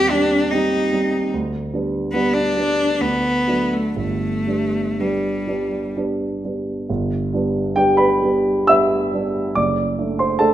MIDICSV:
0, 0, Header, 1, 3, 480
1, 0, Start_track
1, 0, Key_signature, 1, "major"
1, 0, Tempo, 806452
1, 783, Time_signature, 3, 2, 24, 8
1, 1266, Tempo, 877193
1, 1746, Tempo, 991736
1, 2706, Tempo, 949367
1, 3666, Tempo, 872093
1, 4146, Tempo, 934579
1, 4626, Tempo, 855920
1, 5661, End_track
2, 0, Start_track
2, 0, Title_t, "Cello"
2, 0, Program_c, 0, 42
2, 0, Note_on_c, 0, 67, 97
2, 61, Note_on_c, 0, 62, 77
2, 70, Note_off_c, 0, 67, 0
2, 305, Note_on_c, 0, 63, 65
2, 314, Note_off_c, 0, 62, 0
2, 780, Note_off_c, 0, 63, 0
2, 1264, Note_on_c, 0, 59, 71
2, 1382, Note_on_c, 0, 62, 79
2, 1390, Note_off_c, 0, 59, 0
2, 1748, Note_on_c, 0, 59, 79
2, 1755, Note_off_c, 0, 62, 0
2, 2099, Note_on_c, 0, 57, 60
2, 2106, Note_off_c, 0, 59, 0
2, 2216, Note_off_c, 0, 57, 0
2, 2219, Note_on_c, 0, 57, 73
2, 2713, Note_on_c, 0, 55, 52
2, 2721, Note_off_c, 0, 57, 0
2, 3198, Note_off_c, 0, 55, 0
2, 5661, End_track
3, 0, Start_track
3, 0, Title_t, "Grand piano"
3, 0, Program_c, 1, 0
3, 0, Control_c, 1, 64, 127
3, 0, Note_on_c, 1, 39, 67
3, 0, Note_on_c, 1, 55, 45
3, 0, Note_on_c, 1, 60, 52
3, 61, Note_off_c, 1, 55, 0
3, 61, Note_on_c, 1, 55, 48
3, 63, Note_off_c, 1, 60, 0
3, 63, Note_on_c, 1, 60, 49
3, 283, Note_off_c, 1, 55, 0
3, 284, Note_off_c, 1, 60, 0
3, 310, Note_on_c, 1, 55, 47
3, 312, Note_on_c, 1, 60, 46
3, 524, Note_off_c, 1, 55, 0
3, 525, Note_off_c, 1, 60, 0
3, 550, Note_on_c, 1, 55, 41
3, 554, Note_on_c, 1, 60, 43
3, 760, Note_off_c, 1, 55, 0
3, 763, Note_off_c, 1, 60, 0
3, 791, Control_c, 1, 64, 0
3, 794, Note_off_c, 1, 39, 0
3, 795, Note_on_c, 1, 38, 60
3, 896, Control_c, 1, 64, 127
3, 1019, Note_off_c, 1, 38, 0
3, 1032, Note_on_c, 1, 55, 40
3, 1032, Note_on_c, 1, 59, 40
3, 1037, Note_on_c, 1, 62, 44
3, 1247, Note_off_c, 1, 55, 0
3, 1247, Note_off_c, 1, 59, 0
3, 1250, Note_off_c, 1, 62, 0
3, 1275, Note_on_c, 1, 55, 44
3, 1277, Note_on_c, 1, 59, 44
3, 1280, Note_on_c, 1, 62, 45
3, 1483, Note_off_c, 1, 55, 0
3, 1484, Note_off_c, 1, 59, 0
3, 1485, Note_off_c, 1, 62, 0
3, 1505, Note_on_c, 1, 55, 42
3, 1508, Note_on_c, 1, 59, 44
3, 1513, Note_on_c, 1, 62, 46
3, 1727, Note_off_c, 1, 55, 0
3, 1728, Note_off_c, 1, 59, 0
3, 1730, Note_off_c, 1, 62, 0
3, 1747, Note_on_c, 1, 38, 52
3, 1756, Control_c, 1, 64, 0
3, 1855, Control_c, 1, 64, 127
3, 1968, Note_off_c, 1, 38, 0
3, 1974, Note_on_c, 1, 54, 38
3, 1975, Note_on_c, 1, 57, 37
3, 1978, Note_on_c, 1, 62, 40
3, 2196, Note_off_c, 1, 54, 0
3, 2196, Note_off_c, 1, 57, 0
3, 2197, Note_off_c, 1, 62, 0
3, 2210, Note_on_c, 1, 31, 51
3, 2227, Control_c, 1, 64, 0
3, 2322, Control_c, 1, 64, 127
3, 2453, Note_off_c, 1, 31, 0
3, 2456, Note_on_c, 1, 55, 38
3, 2458, Note_on_c, 1, 59, 36
3, 2461, Note_on_c, 1, 62, 37
3, 2683, Note_off_c, 1, 55, 0
3, 2685, Note_off_c, 1, 59, 0
3, 2686, Note_off_c, 1, 62, 0
3, 2707, Note_on_c, 1, 55, 38
3, 2710, Note_on_c, 1, 59, 38
3, 2713, Note_on_c, 1, 62, 41
3, 2934, Note_off_c, 1, 55, 0
3, 2935, Note_off_c, 1, 59, 0
3, 2937, Note_off_c, 1, 62, 0
3, 2952, Note_on_c, 1, 55, 39
3, 2952, Note_on_c, 1, 59, 39
3, 2955, Note_on_c, 1, 62, 44
3, 3174, Note_off_c, 1, 55, 0
3, 3174, Note_off_c, 1, 59, 0
3, 3175, Note_off_c, 1, 62, 0
3, 3201, Note_on_c, 1, 55, 40
3, 3201, Note_on_c, 1, 59, 39
3, 3202, Note_on_c, 1, 62, 44
3, 3418, Note_off_c, 1, 55, 0
3, 3418, Note_off_c, 1, 59, 0
3, 3419, Note_off_c, 1, 62, 0
3, 3442, Note_on_c, 1, 55, 36
3, 3443, Note_on_c, 1, 59, 36
3, 3444, Note_on_c, 1, 62, 37
3, 3649, Note_off_c, 1, 55, 0
3, 3650, Note_off_c, 1, 59, 0
3, 3650, Note_off_c, 1, 62, 0
3, 3670, Note_on_c, 1, 31, 62
3, 3675, Control_c, 1, 64, 0
3, 3775, Control_c, 1, 64, 127
3, 3901, Note_off_c, 1, 31, 0
3, 3912, Note_on_c, 1, 55, 45
3, 3917, Note_on_c, 1, 62, 45
3, 3918, Note_on_c, 1, 59, 43
3, 4127, Note_off_c, 1, 55, 0
3, 4129, Note_off_c, 1, 62, 0
3, 4130, Note_off_c, 1, 59, 0
3, 4145, Note_on_c, 1, 79, 82
3, 4148, Note_on_c, 1, 55, 46
3, 4150, Note_on_c, 1, 59, 44
3, 4150, Note_on_c, 1, 67, 64
3, 4151, Note_on_c, 1, 62, 50
3, 4255, Note_off_c, 1, 67, 0
3, 4256, Note_on_c, 1, 83, 75
3, 4261, Note_off_c, 1, 79, 0
3, 4262, Note_on_c, 1, 71, 60
3, 4364, Note_off_c, 1, 55, 0
3, 4365, Note_off_c, 1, 59, 0
3, 4365, Note_off_c, 1, 62, 0
3, 4386, Note_on_c, 1, 55, 46
3, 4387, Note_on_c, 1, 59, 45
3, 4391, Note_on_c, 1, 62, 50
3, 4606, Note_off_c, 1, 71, 0
3, 4607, Note_off_c, 1, 55, 0
3, 4608, Note_off_c, 1, 59, 0
3, 4610, Note_off_c, 1, 62, 0
3, 4616, Note_on_c, 1, 88, 92
3, 4622, Note_on_c, 1, 55, 43
3, 4623, Note_off_c, 1, 83, 0
3, 4625, Note_on_c, 1, 59, 46
3, 4627, Note_on_c, 1, 76, 73
3, 4628, Note_on_c, 1, 62, 47
3, 4851, Note_off_c, 1, 55, 0
3, 4853, Note_off_c, 1, 59, 0
3, 4854, Note_off_c, 1, 62, 0
3, 4874, Note_on_c, 1, 55, 41
3, 4874, Note_on_c, 1, 59, 44
3, 4877, Note_on_c, 1, 62, 48
3, 5093, Note_off_c, 1, 59, 0
3, 5094, Note_off_c, 1, 55, 0
3, 5095, Note_off_c, 1, 62, 0
3, 5095, Note_off_c, 1, 76, 0
3, 5109, Note_on_c, 1, 86, 77
3, 5111, Note_off_c, 1, 88, 0
3, 5112, Note_on_c, 1, 30, 56
3, 5115, Note_on_c, 1, 74, 56
3, 5127, Control_c, 1, 64, 0
3, 5208, Control_c, 1, 64, 127
3, 5345, Note_off_c, 1, 30, 0
3, 5350, Note_on_c, 1, 57, 43
3, 5352, Note_on_c, 1, 62, 44
3, 5449, Note_off_c, 1, 74, 0
3, 5466, Note_on_c, 1, 84, 70
3, 5468, Note_off_c, 1, 86, 0
3, 5471, Note_on_c, 1, 72, 53
3, 5564, Note_off_c, 1, 57, 0
3, 5565, Note_off_c, 1, 62, 0
3, 5577, Note_on_c, 1, 81, 82
3, 5580, Note_off_c, 1, 72, 0
3, 5582, Note_on_c, 1, 57, 47
3, 5584, Note_on_c, 1, 69, 65
3, 5586, Note_off_c, 1, 84, 0
3, 5586, Note_on_c, 1, 62, 50
3, 5661, Note_off_c, 1, 57, 0
3, 5661, Note_off_c, 1, 62, 0
3, 5661, Note_off_c, 1, 69, 0
3, 5661, Note_off_c, 1, 81, 0
3, 5661, End_track
0, 0, End_of_file